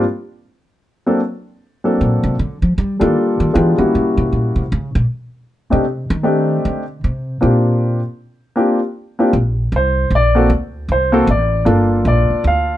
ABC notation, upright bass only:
X:1
M:3/4
L:1/8
Q:"Swing" 1/4=155
K:Bb
V:1 name="Upright bass" clef=bass
z6 | z4 B,, C, | D, F, G, E, D, E, | _F, E, _D, C, B,, C, |
_D, B,, z3 C,- | C, E,3 D,2 | C,2 B,,3 z | z6 |
B,,,2 C,,2 B,,,2 | D,,2 C,,2 A,,,2 | G,,,2 B,,, z D,,2 |]